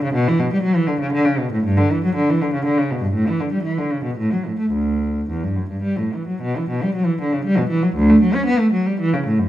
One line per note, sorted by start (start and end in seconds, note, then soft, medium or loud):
0.04 0.15 C#3 medium
0.14 0.25 B2 medium
0.28 0.39 E3 medium
0.40 0.51 B2 medium
0.53 0.64 G3 medium
0.62 0.75 F#3 medium
0.76 0.88 E3 medium
0.87 1.00 D3 medium
1.00 1.13 C#3 medium
1.13 1.25 D3 medium
1.25 1.38 C#3 medium
1.38 1.52 B2 medium
1.52 1.65 A2 medium
1.64 1.77 G2 medium
1.77 1.91 D3 medium
1.92 2.04 E3 medium
2.05 2.16 F#3 medium
2.15 2.28 D3 medium
2.30 2.41 E3 medium
2.42 2.53 D3 medium
2.54 2.65 C#3 medium
2.65 2.77 D3 medium
2.78 2.90 C#3 medium
2.91 3.03 B2 medium
3.02 3.14 G2 medium
3.14 3.26 A2 medium
3.28 3.40 E3 medium
3.40 3.52 D3 medium
3.52 3.64 G3 medium
3.63 3.76 E3 medium
3.78 3.91 D3 medium
3.92 4.04 C#3 medium
4.04 4.17 B2 medium
4.18 4.30 A2 medium
4.33 4.45 F#3 medium
4.47 4.59 A2 medium
4.59 4.72 A3 medium
4.73 5.27 D2 medium
5.30 5.42 E2 medium
5.43 5.56 G2 soft
5.56 5.69 F#2 soft
5.70 5.83 G2 soft
5.83 5.97 G3 medium
5.98 6.12 A2 soft
6.15 6.28 E3 soft
6.28 6.42 F#3 soft
6.42 6.56 B2 medium
6.57 6.70 E3 medium
6.70 6.82 B2 medium
6.83 6.95 G3 medium
6.95 7.08 F#3 medium
7.06 7.20 E3 medium
7.21 7.34 D3 medium
7.33 7.46 C#3 medium
7.45 7.58 G3 medium
7.58 7.71 B2 medium
7.70 7.83 E3 medium
7.83 7.96 F#3 medium
7.95 8.09 D2 medium
8.10 8.23 A3 medium
8.22 8.35 F#3 medium
8.34 8.47 C#4 medium
8.46 8.60 B3 medium
8.59 8.73 A3 medium
8.72 8.85 F#3 medium
8.86 8.99 G3 medium
9.00 9.12 E3 medium
9.13 9.26 C#3 medium
9.27 9.39 A2 medium
9.39 9.49 F#2 medium